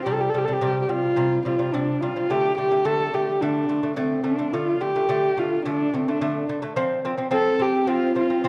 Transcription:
0.04 0.28 C3 medium
0.04 0.28 G3 loud
0.04 0.15 G4 medium
0.13 0.22 A4 medium
0.21 0.31 G4 medium
0.30 0.40 A4 medium
0.34 0.45 C3 medium
0.34 0.45 G3 medium
0.38 0.47 G4 medium
0.45 0.58 C3 medium
0.45 0.59 G3 medium
0.45 0.55 A4 medium
0.53 0.81 G4 medium
0.61 0.83 C3 medium
0.61 0.84 G3 loud
0.82 0.92 G4 medium
0.89 1.11 C3 medium
0.89 1.11 G3 medium
0.89 1.45 F4 medium
1.16 1.39 C3 medium
1.16 1.39 G3 loud
1.45 1.56 C3 medium
1.45 1.56 G3 medium
1.45 1.74 F4 medium
1.59 1.70 C3 medium
1.59 1.70 G3 medium
1.73 1.96 C3 medium
1.73 1.96 G3 loud
1.73 2.02 D4 medium
2.01 2.13 C3 medium
2.01 2.13 G3 medium
2.01 2.32 F4 medium
2.16 2.26 C3 medium
2.16 2.27 G3 medium
2.30 2.52 D3 medium
2.30 2.52 A3 medium
2.30 2.57 G4 medium
2.58 2.68 D3 medium
2.58 2.68 A3 medium
2.58 2.87 G4 medium
2.71 2.82 D3 medium
2.71 2.82 A3 medium
2.85 3.07 D3 medium
2.85 3.07 A3 medium
2.85 3.16 A4 medium
3.13 3.35 D3 medium
3.13 3.35 A3 medium
3.13 3.43 G4 medium
3.41 3.64 D3 medium
3.41 3.64 A3 loud
3.41 3.97 D4 medium
3.69 3.80 D3 medium
3.69 3.80 A3 medium
3.83 3.94 D3 medium
3.83 3.94 A3 medium
3.96 4.19 D3 medium
3.96 4.19 A3 loud
3.96 4.26 C4 medium
4.23 4.35 D3 medium
4.23 4.35 A3 medium
4.23 4.55 D4 medium
4.38 4.50 D3 medium
4.38 4.50 A3 medium
4.53 4.75 D3 medium
4.53 4.76 A3 medium
4.53 4.83 F4 medium
4.81 4.92 D3 medium
4.81 4.92 A3 medium
4.81 5.41 G4 medium
4.96 5.06 D3 medium
4.96 5.06 A3 medium
5.09 5.31 D3 medium
5.09 5.31 A3 loud
5.37 5.59 D3 medium
5.37 5.59 A3 medium
5.37 5.65 F4 medium
5.65 5.87 D3 medium
5.65 5.87 A3 loud
5.65 5.95 D4 medium
5.94 6.04 D3 medium
5.94 6.05 A3 medium
5.94 6.10 C4 medium
6.08 6.18 D3 medium
6.08 6.19 A3 medium
6.08 6.50 D4 medium
6.21 6.43 D3 loud
6.21 6.43 A3 loud
6.49 6.60 D3 medium
6.49 6.60 A3 medium
6.62 6.73 D3 medium
6.62 6.74 A3 medium
6.76 6.99 F3 loud
6.76 6.99 C4 loud
7.05 7.16 F3 medium
7.05 7.16 C4 medium
7.18 7.29 F3 medium
7.18 7.29 C4 medium
7.31 7.54 F3 medium
7.31 7.54 C4 loud
7.31 7.63 A4 loud
7.59 7.82 F3 medium
7.59 7.82 C4 medium
7.59 7.91 G4 medium
7.87 8.10 F3 medium
7.87 8.10 C4 medium
7.87 8.17 F4 loud
8.15 8.27 F3 medium
8.15 8.27 C4 medium
8.15 8.48 F4 medium
8.30 8.41 F3 medium
8.30 8.41 C4 medium
8.44 8.48 F3 medium
8.44 8.48 C4 loud

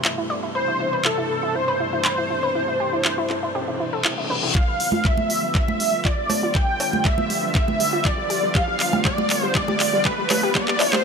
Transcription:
0.00 4.51 G2 medium
0.00 4.51 B2 medium
0.00 4.51 C3 medium
0.00 4.51 E3 medium
0.00 4.51 A3 medium
0.00 0.51 E4 medium
0.05 0.14 E4 medium
0.05 clap loud
0.05 ride medium
0.18 0.26 E4 medium
0.30 0.39 D5 medium
0.30 ride medium
0.43 0.51 E4 medium
0.55 4.51 D4 medium
0.55 0.64 B4 loud
0.55 1.02 C5 loud
0.55 ride medium
0.68 0.76 E4 medium
0.80 0.89 E4 medium
0.80 snare soft
0.80 ride medium
0.93 1.01 B4 medium
1.05 1.14 E4 medium
1.05 1.57 A4 loud
1.05 clap loud
1.18 1.26 E4 medium
1.30 ride medium
1.43 1.51 E4 medium
1.55 1.64 E4 medium
1.55 4.05 C5 loud
1.55 ride medium
1.68 1.76 B4 medium
1.68 snare soft
1.80 1.89 E4 medium
1.80 ride medium
1.93 2.01 E4 medium
1.93 ride soft
2.05 2.14 B4 medium
2.05 clap loud
2.05 ride medium
2.18 2.26 E4 medium
2.30 2.39 E4 medium
2.43 2.51 B4 medium
2.55 2.64 E4 medium
2.55 ride medium
2.68 2.76 E4 medium
2.68 ride soft
2.80 2.89 G4 medium
2.80 ride medium
2.93 3.01 E4 medium
2.93 ride soft
3.05 3.14 E4 medium
3.05 clap loud
3.05 ride medium
3.18 3.26 E4 medium
3.30 3.39 E4 medium
3.30 snare loud
3.30 clap soft
3.30 ride medium
3.43 3.51 E4 medium
3.55 3.64 G4 medium
3.55 snare medium
3.55 ride medium
3.55 reverse cymbal medium
3.61 snare medium
3.61 ride medium
3.68 3.76 E4 medium
3.68 snare medium
3.68 ride medium
3.74 snare medium
3.74 ride medium
3.80 3.89 E4 medium
3.93 4.01 A4 medium
3.93 ride medium
4.05 4.14 E4 medium
4.05 snare medium
4.05 clap loud
4.12 snare medium
4.12 ride medium
4.18 4.26 E4 medium
4.18 snare medium
4.18 ride medium
4.24 snare medium
4.24 ride medium
4.30 4.39 B4 medium
4.30 snare loud
4.30 ride medium
4.43 4.51 E4 medium
4.43 snare loud
4.43 ride medium
4.55 11.04 D3 medium
4.55 11.04 F3 medium
4.55 11.04 G3 medium
4.55 11.04 B3 medium
4.55 11.04 F4 medium
4.55 4.64 F4 loud
4.55 5.07 F5 loud
4.55 kick loud
4.55 clap soft
4.55 riser medium
4.68 4.76 G3 medium
4.80 4.89 G3 medium
4.80 open hi-hat loud
4.92 5.01 F4 medium
4.92 high conga medium
5.05 5.14 G3 medium
5.05 5.55 E5 loud
5.05 kick loud
5.05 clap soft
5.17 5.26 G3 medium
5.17 high conga medium
5.30 open hi-hat loud
5.43 5.51 G3 medium
5.55 5.64 G3 medium
5.55 6.07 E5 loud
5.55 kick loud
5.55 clap medium
5.68 5.76 F4 medium
5.68 high conga medium
5.80 5.89 G3 medium
5.80 open hi-hat loud
5.93 6.01 G3 medium
6.05 6.14 F4 medium
6.05 6.57 D5 loud
6.05 kick loud
6.05 clap medium
6.18 6.26 G3 medium
6.30 6.39 G3 medium
6.30 open hi-hat loud
6.30 cowbell medium
6.30 high conga medium
6.43 6.51 F4 medium
6.55 6.64 G3 medium
6.55 7.05 G5 loud
6.55 kick loud
6.55 clap medium
6.68 6.76 G3 medium
6.80 6.89 D4 medium
6.80 open hi-hat loud
6.80 cowbell medium
6.93 7.01 G3 medium
6.93 high conga medium
7.05 7.14 G3 medium
7.05 7.52 E5 loud
7.05 kick loud
7.05 clap medium
7.18 7.26 B3 medium
7.18 high conga medium
7.30 7.39 G3 medium
7.30 open hi-hat loud
7.43 7.51 G3 medium
7.55 7.64 B3 medium
7.55 8.07 E5 loud
7.55 kick loud
7.55 clap medium
7.68 7.76 G3 medium
7.68 high conga medium
7.80 7.89 G3 medium
7.80 open hi-hat loud
7.93 8.01 F4 medium
8.05 8.14 G3 medium
8.05 8.57 D5 loud
8.05 kick loud
8.05 clap medium
8.18 8.26 G3 medium
8.30 8.39 G4 medium
8.30 open hi-hat loud
8.43 8.51 G3 medium
8.55 8.64 G4 loud
8.55 9.05 F5 loud
8.55 kick loud
8.55 clap medium
8.68 8.76 G3 medium
8.80 8.89 G3 medium
8.80 clap medium
8.80 open hi-hat loud
8.93 9.01 G4 medium
8.93 high conga medium
9.05 9.14 G3 medium
9.05 9.52 D5 loud
9.05 kick loud
9.05 clap medium
9.18 9.26 G3 medium
9.18 high conga medium
9.30 clap medium
9.30 open hi-hat loud
9.43 9.51 G3 medium
9.55 9.64 G3 medium
9.55 10.07 D5 loud
9.55 kick loud
9.55 clap medium
9.68 9.76 G4 medium
9.68 high conga medium
9.80 9.89 G3 medium
9.80 clap medium
9.80 open hi-hat loud
9.93 10.01 G3 medium
10.05 10.14 G4 medium
10.05 10.55 B4 medium
10.05 kick loud
10.05 clap medium
10.18 10.26 G3 medium
10.30 10.39 G3 medium
10.30 clap medium
10.30 open hi-hat loud
10.30 cowbell medium
10.30 high conga medium
10.43 10.51 G4 loud
10.55 10.64 G3 medium
10.55 10.92 D5 loud
10.55 kick loud
10.55 clap medium
10.68 10.76 G3 medium
10.68 clap medium
10.80 10.89 E4 medium
10.80 clap medium
10.80 open hi-hat loud
10.80 cowbell medium
10.92 11.01 G3 medium
10.92 11.04 C5 loud
10.92 clap medium
10.92 high conga medium

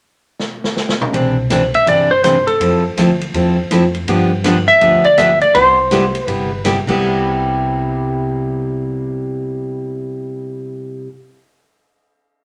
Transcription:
0.39 snare medium
0.64 snare medium
0.77 snare medium
0.89 snare medium
1.01 mid tom medium
1.13 1.72 C2 loud
1.13 1.35 C3 soft
1.13 1.35 E3 soft
1.13 1.35 C4 soft
1.13 1.35 D4 medium
1.13 kick soft
1.13 ride medium
1.50 1.61 C3 medium
1.50 1.62 E3 medium
1.50 1.62 C4 medium
1.50 1.62 D4 medium
1.50 kick soft
1.50 snare medium
1.50 hi-hat pedal medium
1.50 ride medium
1.74 1.87 E5 medium
1.74 ride soft
1.86 2.46 G1 medium
1.86 2.08 C3 soft
1.86 2.08 E3 medium
1.86 2.09 C4 medium
1.86 2.09 D4 medium
1.86 2.12 D5 medium
1.86 kick soft
1.86 ride medium
2.11 2.23 C5 medium
2.23 2.35 C3 medium
2.23 2.35 E3 medium
2.23 2.35 C4 medium
2.23 2.36 D4 medium
2.23 2.46 C5 medium
2.23 kick soft
2.23 snare medium
2.23 hi-hat pedal medium
2.23 ride medium
2.47 2.84 A4 medium
2.47 ride soft
2.60 2.90 F2 medium
2.60 2.82 F3 medium
2.60 2.82 C4 soft
2.60 2.82 E4 soft
2.60 2.83 A4 medium
2.60 kick soft
2.60 ride medium
2.97 3.28 D2 medium
2.97 3.09 F3 medium
2.97 3.09 C4 medium
2.97 3.09 E4 medium
2.97 3.09 A4 medium
2.97 kick soft
2.97 snare medium
2.97 hi-hat pedal medium
2.97 ride medium
3.21 ride soft
3.34 3.65 E2 medium
3.34 3.56 F3 medium
3.34 3.56 C4 medium
3.34 3.56 E4 medium
3.34 3.57 A4 medium
3.34 kick soft
3.34 ride medium
3.71 4.02 F2 medium
3.71 3.83 F3 medium
3.71 3.83 C4 medium
3.71 3.83 E4 medium
3.71 3.83 A4 medium
3.71 kick soft
3.71 snare medium
3.71 hi-hat pedal medium
3.71 ride medium
3.95 ride soft
4.08 4.66 G2 medium
4.08 4.30 D3 soft
4.08 4.30 F3 medium
4.08 4.30 B3 medium
4.08 4.30 D4 soft
4.08 4.30 G4 medium
4.08 kick soft
4.08 ride medium
4.44 4.56 D3 medium
4.44 4.56 F3 medium
4.44 4.56 B3 medium
4.44 4.56 D4 medium
4.44 4.57 G4 medium
4.44 kick soft
4.44 snare medium
4.44 hi-hat pedal medium
4.44 ride medium
4.68 5.06 E5 loud
4.68 ride soft
4.81 5.40 D2 medium
4.81 5.03 D3 medium
4.81 5.03 F3 medium
4.81 5.03 B3 medium
4.81 5.03 D4 medium
4.81 5.03 G4 medium
4.81 kick soft
4.81 ride medium
5.04 5.19 D5 loud
5.04 ride soft
5.17 5.29 D3 medium
5.17 5.29 F3 medium
5.17 5.30 B3 medium
5.17 5.30 D4 medium
5.17 5.30 G4 medium
5.17 5.41 E5 medium
5.17 kick soft
5.17 snare medium
5.17 hi-hat pedal medium
5.17 ride medium
5.41 5.55 D5 medium
5.41 ride soft
5.54 6.13 C2 medium
5.54 5.76 C3 medium
5.54 5.77 G3 soft
5.54 5.77 B3 medium
5.54 5.77 E4 medium
5.54 5.77 G4 medium
5.54 6.26 C5 medium
5.54 kick soft
5.54 ride medium
5.91 6.03 C3 medium
5.91 6.03 G3 medium
5.91 6.03 B3 medium
5.91 6.03 E4 medium
5.91 6.03 G4 medium
5.91 kick soft
5.91 snare medium
5.91 hi-hat pedal soft
5.91 ride medium
6.15 ride soft
6.26 6.76 G1 medium
6.26 6.49 C3 medium
6.26 6.50 G3 medium
6.26 6.50 B3 medium
6.26 6.50 E4 medium
6.26 6.50 G4 medium
6.26 6.61 B4 medium
6.26 kick soft
6.26 ride soft
6.64 6.76 C3 medium
6.64 6.76 G3 medium
6.64 6.77 B3 medium
6.64 6.77 E4 medium
6.64 6.77 G4 medium
6.64 kick soft
6.64 snare medium
6.64 hi-hat pedal medium
6.64 ride medium
6.87 11.03 C2 loud
6.87 11.06 C3 medium
6.87 11.07 G3 medium
6.87 11.08 B3 medium
6.87 11.09 E4 medium
6.87 11.10 G4 medium
6.87 kick medium
6.87 crash medium

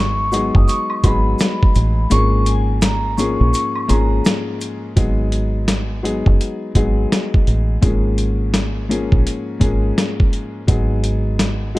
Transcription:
0.00 0.50 G#1 loud
0.00 0.25 F#3 loud
0.00 0.26 G#3 medium
0.00 0.26 B3 medium
0.00 0.26 D#4 medium
0.00 0.26 G#4 loud
0.00 0.51 C#6 loud
0.32 0.99 F#3 medium
0.32 0.99 G#3 medium
0.32 0.99 B3 medium
0.32 1.00 D#4 medium
0.32 1.00 G#4 loud
0.32 closed hi-hat medium
0.32 maracas medium
0.55 0.66 F#1 medium
0.55 0.68 D#6 medium
0.55 kick loud
0.68 1.00 C#6 medium
0.68 closed hi-hat medium
0.68 maracas medium
0.90 high woodblock medium
1.04 1.33 G#1 medium
1.04 2.04 F#3 loud
1.04 2.05 G#3 medium
1.04 2.05 B3 medium
1.04 2.05 D#4 medium
1.04 2.05 G#4 loud
1.04 2.08 B5 medium
1.04 kick medium
1.04 closed hi-hat medium
1.04 high woodblock medium
1.04 maracas soft
1.39 snare loud
1.39 closed hi-hat loud
1.39 maracas medium
1.63 kick loud
1.75 2.05 A1 medium
1.75 closed hi-hat medium
1.75 maracas soft
2.10 3.36 G#1 loud
2.10 3.11 G#2 loud
2.10 3.11 F3 medium
2.10 3.11 G#3 medium
2.10 3.12 A#3 loud
2.10 3.12 C#4 medium
2.10 3.12 G#4 loud
2.10 2.43 C#6 loud
2.10 closed hi-hat loud
2.10 maracas medium
2.46 2.79 G#5 medium
2.46 closed hi-hat medium
2.46 maracas soft
2.82 3.15 A#5 medium
2.82 snare loud
2.82 closed hi-hat loud
2.82 maracas medium
3.17 3.85 G#2 medium
3.17 3.85 F3 medium
3.17 3.85 G#3 medium
3.17 3.85 A#3 medium
3.17 3.86 C#4 medium
3.17 3.86 G#4 loud
3.17 3.50 C#6 medium
3.17 closed hi-hat medium
3.17 maracas medium
3.41 3.52 A#1 medium
3.53 3.86 C#6 medium
3.53 closed hi-hat medium
3.53 maracas medium
3.76 high woodblock medium
3.88 4.19 G#1 medium
3.88 4.89 G#2 loud
3.88 4.89 F3 medium
3.88 4.90 G#3 medium
3.88 4.90 A#3 medium
3.88 4.90 C#4 medium
3.88 4.90 G#4 loud
3.88 4.21 A#5 medium
3.88 closed hi-hat medium
3.88 high woodblock medium
3.88 maracas soft
4.25 snare loud
4.25 closed hi-hat loud
4.25 maracas medium
4.61 closed hi-hat medium
4.61 maracas soft
4.96 6.22 G#1 loud
4.96 5.97 F#3 medium
4.96 5.97 G#3 medium
4.96 5.97 B3 medium
4.96 5.98 D#4 medium
4.96 5.98 G#4 loud
4.96 kick loud
4.96 closed hi-hat medium
5.32 closed hi-hat medium
5.68 snare loud
5.68 closed hi-hat loud
6.03 6.70 F#3 medium
6.03 6.71 G#3 medium
6.03 6.71 B3 medium
6.03 6.71 D#4 medium
6.03 6.71 G#4 medium
6.03 closed hi-hat medium
6.26 6.38 F#1 medium
6.26 kick medium
6.41 closed hi-hat medium
6.75 7.05 G#1 medium
6.75 7.76 F#3 medium
6.75 7.76 G#3 medium
6.75 7.76 B3 medium
6.75 7.76 D#4 medium
6.75 7.77 G#4 loud
6.75 kick medium
6.75 closed hi-hat medium
7.12 snare loud
7.12 closed hi-hat medium
7.34 kick loud
7.47 7.77 A1 medium
7.47 closed hi-hat medium
7.81 9.08 G#1 loud
7.81 8.82 G#2 loud
7.81 8.83 F3 medium
7.81 8.83 G#3 medium
7.81 8.83 A#3 medium
7.81 8.83 C#4 medium
7.81 8.83 G#4 loud
7.81 kick loud
7.81 closed hi-hat medium
8.18 closed hi-hat medium
8.54 snare loud
8.54 closed hi-hat loud
8.89 9.56 G#2 medium
8.89 9.57 F3 medium
8.89 9.57 G#3 medium
8.89 9.57 A#3 medium
8.89 9.57 C#4 medium
8.89 9.57 G#4 loud
8.89 closed hi-hat medium
9.12 9.23 A#1 medium
9.12 kick medium
9.27 closed hi-hat medium
9.59 9.91 G#1 medium
9.59 10.61 G#2 medium
9.59 10.61 F3 medium
9.59 10.61 G#3 medium
9.59 10.61 A#3 medium
9.59 10.61 C#4 medium
9.59 10.62 G#4 loud
9.59 kick medium
9.59 closed hi-hat medium
9.98 snare loud
9.98 closed hi-hat medium
10.20 kick loud
10.33 closed hi-hat medium
10.67 11.79 G#1 loud
10.67 11.68 F#3 loud
10.67 11.69 G#3 medium
10.67 11.69 B3 medium
10.67 11.69 D#4 medium
10.67 11.69 G#4 loud
10.67 kick loud
10.67 closed hi-hat medium
11.04 closed hi-hat medium
11.39 snare loud
11.39 closed hi-hat loud
11.75 11.79 F#3 medium
11.75 11.79 G#3 medium
11.75 11.79 B3 medium
11.75 11.79 D#4 medium

